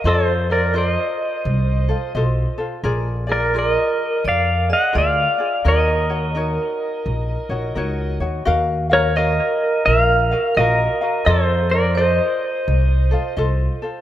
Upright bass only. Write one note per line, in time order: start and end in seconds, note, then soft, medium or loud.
0.04 0.95 F2 loud
1.45 1.91 C2 loud
2.15 2.43 B1 loud
2.84 3.75 A#1 medium
4.24 4.70 F2 loud
4.95 5.24 D2 loud
5.65 6.57 D#2 medium
7.06 7.35 A#1 loud
7.49 7.73 A#1 medium
7.76 8.16 C#2 medium
8.20 8.44 D#2 medium
8.47 9.38 D#2 loud
9.87 10.33 A#1 medium
10.57 10.86 A#1 loud
11.27 12.18 F2 loud
12.68 13.13 C2 loud
13.37 13.66 C2 loud